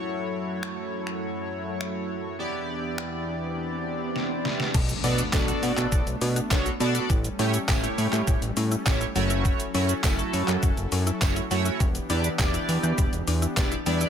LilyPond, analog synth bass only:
\new Staff \with { instrumentName = "Analog synth bass" } { \clef bass \time 4/4 \key b \minor \tempo 4 = 102 r1 | r1 | b,,8 b,8 b,,8 b,16 b,16 b,,16 b,,16 b,8 b,,8 b,8 | a,,8 a,8 a,,8 a,16 a,16 a,,16 a,,16 a,8 a,,8 fis,,8~ |
fis,,8 fis,8 fis,,8 fis,16 fis,16 fis,,16 fis,,16 fis,8 fis,,8 fis,8 | e,,8 e,8 e,,8 e,16 e,16 e,,16 e,,16 e,8 e,,8 e,8 | }